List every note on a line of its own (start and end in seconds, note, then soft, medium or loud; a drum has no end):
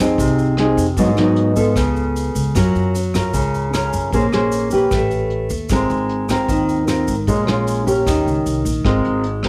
0.00 0.15 F2 medium
0.00 0.17 F3 medium
0.00 0.56 C4 medium
0.00 0.56 D#4 medium
0.00 0.56 G#4 medium
0.00 shaker medium
0.18 0.74 C2 medium
0.18 0.96 C3 medium
0.18 kick medium
0.18 closed hi-hat soft
0.18 shaker medium
0.38 closed hi-hat soft
0.38 shaker soft
0.57 0.85 C4 soft
0.57 0.86 D#4 medium
0.57 0.85 G#4 medium
0.57 cross-stick medium
0.57 closed hi-hat soft
0.77 0.96 F2 medium
0.77 kick soft
0.77 closed hi-hat soft
0.77 shaker medium
0.97 1.15 G#2 medium
0.97 1.75 G#2 medium
0.97 1.10 F#3 medium
0.97 1.10 B3 medium
0.97 1.10 D#4 medium
0.97 kick medium
0.97 closed hi-hat soft
0.97 shaker medium
1.17 1.72 G#2 medium
1.17 1.54 F#3 medium
1.17 1.54 B3 medium
1.17 1.54 D#4 medium
1.17 cross-stick medium
1.17 closed hi-hat soft
1.17 shaker soft
1.36 closed hi-hat soft
1.56 2.32 B3 soft
1.56 2.32 F4 medium
1.56 2.32 A4 medium
1.56 kick soft
1.56 closed hi-hat soft
1.56 shaker medium
1.76 2.31 C#2 medium
1.76 2.53 C#3 medium
1.76 kick medium
1.76 cross-stick medium
1.76 closed hi-hat soft
1.76 shaker medium
1.96 closed hi-hat soft
1.96 shaker soft
2.16 closed hi-hat soft
2.16 shaker soft
2.35 2.53 C#2 medium
2.35 kick soft
2.35 closed hi-hat soft
2.35 shaker medium
2.55 2.73 F#2 medium
2.55 3.32 F#3 medium
2.55 2.94 C#4 medium
2.55 2.95 F4 medium
2.55 2.95 A#4 medium
2.55 kick medium
2.55 cross-stick medium
2.55 closed hi-hat soft
2.55 shaker medium
2.75 3.30 F#2 medium
2.75 closed hi-hat soft
2.75 shaker soft
2.95 closed hi-hat soft
2.95 shaker medium
3.14 3.70 C#4 medium
3.14 3.71 F4 medium
3.14 3.70 A#4 medium
3.14 kick soft
3.14 cross-stick medium
3.14 closed hi-hat soft
3.14 shaker medium
3.34 3.89 C#2 medium
3.34 4.10 C#3 medium
3.34 kick medium
3.34 closed hi-hat soft
3.34 shaker medium
3.54 closed hi-hat soft
3.54 shaker soft
3.73 4.11 C#4 medium
3.73 4.11 F4 medium
3.73 4.11 A#4 medium
3.73 cross-stick medium
3.73 closed hi-hat soft
3.73 shaker soft
3.93 4.11 F#2 medium
3.93 kick soft
3.93 closed hi-hat soft
3.93 shaker medium
4.13 4.31 A#1 medium
4.13 4.90 A#3 medium
4.13 4.24 C#4 medium
4.13 4.24 G#4 medium
4.13 4.25 C5 medium
4.13 kick medium
4.13 closed hi-hat soft
4.13 shaker medium
4.33 4.87 A#1 medium
4.33 4.69 C#4 medium
4.33 4.69 G#4 medium
4.33 4.69 C5 medium
4.33 cross-stick medium
4.33 closed hi-hat soft
4.33 shaker soft
4.52 closed hi-hat soft
4.52 shaker soft
4.71 5.47 C#4 medium
4.71 5.47 G4 medium
4.71 5.48 B4 medium
4.71 kick soft
4.71 closed hi-hat soft
4.71 shaker medium
4.91 5.46 A1 medium
4.91 5.69 A3 medium
4.91 kick medium
4.91 cross-stick medium
4.91 closed hi-hat soft
4.91 shaker medium
5.11 closed hi-hat soft
5.11 shaker soft
5.30 closed hi-hat soft
5.50 5.68 D#2 medium
5.50 kick soft
5.50 closed hi-hat soft
5.50 shaker medium
5.69 5.88 G#1 medium
5.69 6.47 G#3 medium
5.69 6.26 C4 medium
5.69 6.26 F4 medium
5.69 6.27 A#4 medium
5.69 kick medium
5.69 cross-stick medium
5.69 closed hi-hat soft
5.69 shaker medium
5.90 6.45 G#1 medium
5.90 closed hi-hat soft
5.90 shaker soft
6.09 closed hi-hat soft
6.29 6.85 C4 medium
6.29 6.85 F4 medium
6.29 6.85 A#4 medium
6.29 kick soft
6.29 cross-stick medium
6.29 closed hi-hat soft
6.29 shaker medium
6.48 7.03 D#2 medium
6.48 7.25 D#3 medium
6.48 kick medium
6.48 closed hi-hat soft
6.48 shaker medium
6.69 closed hi-hat soft
6.69 shaker soft
6.87 7.14 C4 medium
6.87 7.14 F4 soft
6.87 7.14 A#4 medium
6.87 cross-stick medium
6.87 closed hi-hat soft
6.87 shaker medium
7.08 7.26 G#1 medium
7.08 kick soft
7.08 closed hi-hat soft
7.08 shaker medium
7.27 7.45 A#1 medium
7.27 8.04 A#2 medium
7.27 7.44 G#3 medium
7.27 7.44 C#4 medium
7.27 7.45 F4 medium
7.27 kick medium
7.27 closed hi-hat soft
7.27 shaker medium
7.47 8.02 A#1 medium
7.47 7.83 G#3 medium
7.47 7.84 C#4 medium
7.47 7.84 F4 medium
7.47 cross-stick medium
7.47 closed hi-hat soft
7.47 shaker soft
7.67 closed hi-hat soft
7.67 shaker medium
7.87 8.62 C#4 medium
7.87 8.62 G4 medium
7.87 8.62 A#4 medium
7.87 kick soft
7.87 closed hi-hat soft
7.87 shaker medium
8.07 8.24 D#2 medium
8.07 8.83 D#3 medium
8.07 kick medium
8.07 cross-stick medium
8.07 closed hi-hat soft
8.07 shaker medium
8.26 8.44 C#2 medium
8.26 closed hi-hat soft
8.26 shaker soft
8.46 8.63 C2 medium
8.46 closed hi-hat soft
8.46 shaker medium
8.65 8.83 A#1 medium
8.65 kick soft
8.65 closed hi-hat soft
8.65 shaker medium
8.85 9.03 G#1 medium
8.85 9.49 G#3 medium
8.85 9.24 C4 soft
8.85 9.24 F4 medium
8.85 9.24 A#4 medium
8.85 kick medium
8.85 cross-stick medium
8.85 closed hi-hat soft
9.05 9.49 G#1 medium
9.05 closed hi-hat soft
9.24 closed hi-hat soft
9.43 9.49 C4 medium
9.43 9.49 F4 medium
9.43 kick soft
9.43 cross-stick medium
9.43 closed hi-hat soft